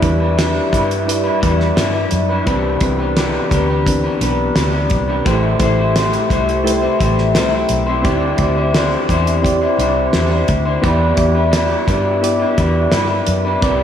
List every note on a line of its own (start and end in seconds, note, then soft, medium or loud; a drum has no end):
0.00 0.59 E2 loud
0.00 0.20 E3 medium
0.00 0.21 G3 medium
0.00 1.06 G3 medium
0.00 0.02 D4 medium
0.00 0.21 D4 medium
0.00 0.94 D4 medium
0.00 0.03 E4 medium
0.00 0.21 E4 medium
0.00 0.95 E4 medium
0.00 0.04 B4 loud
0.00 0.19 B4 medium
0.00 kick loud
0.00 closed hi-hat medium
0.04 0.95 B4 medium
0.20 0.37 D4 soft
0.20 0.37 E4 medium
0.20 0.38 B4 medium
0.37 0.73 E3 medium
0.37 0.70 G3 medium
0.37 0.72 D4 medium
0.37 0.72 E4 medium
0.37 0.73 B4 medium
0.37 snare loud
0.37 closed hi-hat loud
0.72 1.28 G2 medium
0.72 1.25 G3 medium
0.72 1.25 D4 medium
0.72 1.24 E4 medium
0.72 1.23 B4 medium
0.72 kick medium
0.72 closed hi-hat medium
0.91 closed hi-hat medium
1.06 2.29 G3 medium
1.06 2.29 D4 medium
1.06 2.30 E4 medium
1.06 2.30 B4 medium
1.06 closed hi-hat loud
1.24 1.40 D4 soft
1.24 1.41 E4 medium
1.24 1.42 B4 medium
1.41 1.71 E2 medium
1.41 1.75 G3 medium
1.41 1.76 D4 medium
1.41 1.76 E4 medium
1.41 1.77 B4 medium
1.41 kick loud
1.41 closed hi-hat medium
1.60 snare soft
1.76 2.05 G2 loud
1.76 1.94 E3 medium
1.76 1.94 G3 medium
1.76 1.95 D4 medium
1.76 1.94 E4 medium
1.76 1.92 B4 medium
1.76 snare loud
1.76 closed hi-hat medium
1.93 2.30 D4 medium
1.93 2.29 E4 medium
1.93 2.28 B4 medium
2.11 2.40 F#2 loud
2.11 closed hi-hat medium
2.29 2.47 D4 medium
2.29 2.48 E4 medium
2.29 2.47 B4 medium
2.45 2.75 C2 loud
2.45 2.99 C3 medium
2.45 2.77 E3 medium
2.45 3.00 E3 medium
2.45 3.00 B3 medium
2.45 2.77 C4 medium
2.45 2.77 D4 medium
2.45 3.00 D4 medium
2.45 2.99 G4 medium
2.45 2.78 B4 medium
2.45 2.97 B4 medium
2.45 kick loud
2.45 closed hi-hat medium
2.81 3.37 C2 medium
2.81 3.73 E3 medium
2.81 3.74 C4 medium
2.81 3.74 D4 medium
2.81 3.74 B4 medium
2.81 kick medium
2.81 closed hi-hat medium
2.99 3.16 B3 soft
2.99 3.16 D4 medium
2.99 3.17 G4 medium
2.99 3.16 B4 medium
3.16 3.51 C3 medium
3.16 3.52 E3 medium
3.16 3.50 B3 medium
3.16 3.50 D4 medium
3.16 3.51 G4 medium
3.16 3.52 B4 medium
3.16 snare loud
3.16 closed hi-hat medium
3.51 4.07 D2 medium
3.51 3.69 B3 medium
3.51 3.69 D4 medium
3.51 3.68 G4 medium
3.51 3.67 B4 medium
3.51 kick medium
3.51 closed hi-hat medium
3.68 4.05 B3 soft
3.68 4.04 D4 medium
3.68 4.03 G4 medium
3.68 4.02 B4 medium
3.86 5.08 E3 medium
3.86 5.09 C4 medium
3.86 5.09 D4 medium
3.86 5.10 B4 medium
3.86 kick loud
3.86 closed hi-hat loud
4.04 4.19 B3 medium
4.04 4.20 D4 medium
4.04 4.21 G4 medium
4.04 4.21 B4 medium
4.20 4.49 B1 medium
4.20 4.55 B3 medium
4.20 4.55 D4 medium
4.20 4.56 G4 medium
4.20 4.56 B4 medium
4.20 closed hi-hat medium
4.55 4.93 D2 medium
4.55 4.73 C3 medium
4.55 4.73 E3 medium
4.55 4.74 B3 medium
4.55 4.73 D4 medium
4.55 4.72 G4 medium
4.55 4.71 B4 medium
4.55 snare loud
4.55 closed hi-hat medium
4.72 5.09 B3 soft
4.72 5.08 D4 soft
4.72 5.08 G4 medium
4.72 5.06 B4 medium
4.90 5.19 C2 medium
4.90 kick loud
4.90 closed hi-hat medium
5.08 5.25 B3 soft
5.08 5.25 D4 soft
5.08 5.26 G4 medium
5.08 5.25 B4 medium
5.25 5.54 A1 loud
5.25 5.60 A2 medium
5.25 5.60 E3 medium
5.25 5.58 G3 medium
5.25 5.56 A3 medium
5.25 5.59 C4 loud
5.25 5.56 E4 medium
5.25 5.60 E4 medium
5.25 5.57 G4 medium
5.25 5.60 C5 medium
5.25 5.57 C5 medium
5.25 kick loud
5.25 closed hi-hat medium
5.59 6.16 A1 medium
5.59 5.78 G3 medium
5.59 6.51 A3 medium
5.59 5.78 C4 medium
5.59 6.51 E4 medium
5.59 5.78 E4 medium
5.59 6.52 G4 medium
5.59 6.52 C5 medium
5.59 5.76 C5 medium
5.59 kick loud
5.59 closed hi-hat medium
5.78 5.95 G3 medium
5.78 5.94 C4 medium
5.78 5.95 E4 medium
5.78 5.95 C5 medium
5.95 6.30 A2 medium
5.95 6.30 E3 medium
5.95 6.28 G3 medium
5.95 6.30 C4 medium
5.95 6.30 E4 medium
5.95 6.31 C5 loud
5.95 snare loud
5.95 closed hi-hat medium
6.13 closed hi-hat medium
6.30 6.86 C2 loud
6.30 6.82 G3 medium
6.30 6.82 C4 medium
6.30 6.82 E4 medium
6.30 6.80 C5 medium
6.30 kick medium
6.30 closed hi-hat medium
6.49 closed hi-hat medium
6.64 7.87 A3 medium
6.64 7.87 E4 medium
6.64 7.87 G4 medium
6.64 6.72 B4 medium
6.64 closed hi-hat loud
6.73 7.91 C5 medium
6.81 6.98 G3 soft
6.81 6.99 C4 medium
6.81 6.99 E4 medium
6.81 6.99 C5 medium
6.99 7.35 A1 medium
6.99 7.34 G3 medium
6.99 7.34 C4 medium
6.99 7.35 E4 medium
6.99 7.35 C5 medium
6.99 kick loud
6.99 closed hi-hat medium
7.18 snare soft
7.34 7.63 C2 medium
7.34 7.52 A2 medium
7.34 7.52 E3 medium
7.34 7.52 G3 medium
7.34 7.52 C4 loud
7.34 7.51 E4 medium
7.34 7.50 C5 medium
7.34 snare loud
7.34 closed hi-hat medium
7.52 7.88 G3 medium
7.52 7.87 C4 soft
7.52 7.87 E4 medium
7.52 7.85 C5 medium
7.69 8.05 B1 medium
7.69 closed hi-hat medium
7.87 8.04 G3 medium
7.87 8.05 C4 medium
7.87 8.04 E4 medium
7.87 8.04 C5 medium
8.02 8.33 D2 loud
8.02 8.39 D3 medium
8.02 8.39 G3 medium
8.02 8.34 C4 medium
8.02 8.40 D4 loud
8.02 8.35 E4 medium
8.02 8.40 E4 medium
8.02 8.35 G4 medium
8.02 8.40 C5 medium
8.02 8.35 D5 medium
8.02 kick loud
8.02 closed hi-hat medium
8.37 8.95 D2 loud
8.37 8.57 G3 medium
8.37 9.30 C4 medium
8.37 8.58 D4 medium
8.37 9.30 E4 medium
8.37 9.31 G4 medium
8.37 9.31 D5 medium
8.37 kick loud
8.37 closed hi-hat medium
8.42 8.57 E4 medium
8.42 8.55 C5 medium
8.57 8.74 D4 medium
8.57 8.74 E4 soft
8.57 8.74 C5 medium
8.74 9.09 D3 medium
8.74 9.08 G3 medium
8.74 9.09 D4 loud
8.74 9.09 E4 medium
8.74 9.10 C5 loud
8.74 snare loud
8.74 closed hi-hat medium
9.09 9.65 E2 medium
9.09 9.61 G3 medium
9.09 9.62 D4 medium
9.09 9.62 E4 medium
9.09 9.60 C5 medium
9.09 kick medium
9.09 closed hi-hat medium
9.27 closed hi-hat medium
9.42 10.65 C4 medium
9.42 10.65 E4 medium
9.42 10.66 G4 medium
9.42 10.66 D5 medium
9.42 kick medium
9.46 closed hi-hat loud
9.62 9.78 D4 medium
9.62 9.79 E4 medium
9.62 9.79 C5 medium
9.79 10.07 C2 medium
9.79 10.13 G3 medium
9.79 10.14 D4 medium
9.79 10.14 E4 medium
9.79 10.15 C5 medium
9.79 closed hi-hat medium
10.13 10.41 E2 medium
10.13 10.31 D3 medium
10.13 10.32 G3 medium
10.13 10.32 D4 medium
10.13 10.31 E4 medium
10.13 10.30 C5 medium
10.13 snare loud
10.13 closed hi-hat medium
10.31 10.67 D4 soft
10.31 10.65 E4 medium
10.31 10.64 C5 medium
10.48 10.77 D2 medium
10.48 kick medium
10.48 closed hi-hat medium
10.65 10.82 D4 soft
10.65 10.82 E4 medium
10.65 10.83 C5 medium
10.82 11.11 E2 loud
10.82 11.35 E3 medium
10.82 11.36 G3 medium
10.82 11.13 B3 medium
10.82 11.36 D4 loud
10.82 11.13 E4 medium
10.82 11.35 E4 medium
10.82 11.14 G4 medium
10.82 11.33 B4 loud
10.82 11.14 D5 medium
10.82 kick loud
10.82 closed hi-hat medium
11.16 11.74 E2 loud
11.16 12.09 B3 medium
11.16 12.09 E4 medium
11.16 12.10 G4 medium
11.16 12.10 D5 medium
11.16 kick medium
11.16 closed hi-hat medium
11.35 11.51 D4 soft
11.35 11.52 E4 medium
11.35 11.52 B4 medium
11.51 11.87 E3 medium
11.51 11.85 G3 medium
11.51 11.86 D4 medium
11.51 11.87 E4 medium
11.51 11.87 B4 medium
11.51 snare loud
11.51 closed hi-hat loud
11.86 12.44 G2 medium
11.86 12.39 G3 medium
11.86 12.40 D4 medium
11.86 12.40 E4 medium
11.86 12.38 B4 medium
11.86 kick medium
11.86 closed hi-hat medium
12.22 13.45 B3 medium
12.22 13.45 E4 medium
12.22 13.45 G4 medium
12.22 13.46 D5 medium
12.22 closed hi-hat loud
12.40 12.57 D4 medium
12.40 12.58 E4 medium
12.40 12.57 B4 medium
12.57 12.86 E2 medium
12.57 12.90 G3 medium
12.57 12.91 D4 medium
12.57 12.91 E4 medium
12.57 12.92 B4 medium
12.57 kick loud
12.57 closed hi-hat medium
12.91 13.20 G2 medium
12.91 13.09 E3 medium
12.91 13.10 G3 medium
12.91 13.10 D4 medium
12.91 13.09 E4 medium
12.91 13.08 B4 medium
12.91 snare loud
12.91 closed hi-hat medium
13.09 13.46 D4 soft
13.09 13.45 E4 medium
13.09 13.44 B4 medium
13.27 13.55 F#2 medium
13.27 closed hi-hat medium
13.45 13.63 D4 medium
13.45 13.63 E4 medium
13.45 13.62 B4 medium
13.61 13.83 C2 loud
13.61 13.83 C3 medium
13.61 13.83 E3 medium
13.61 13.83 B3 medium
13.61 13.83 C4 medium
13.61 13.83 D4 medium
13.61 13.83 E4 medium
13.61 13.83 G4 medium
13.61 13.83 B4 medium
13.61 13.83 B4 loud
13.61 13.83 D5 loud
13.61 kick loud
13.61 closed hi-hat medium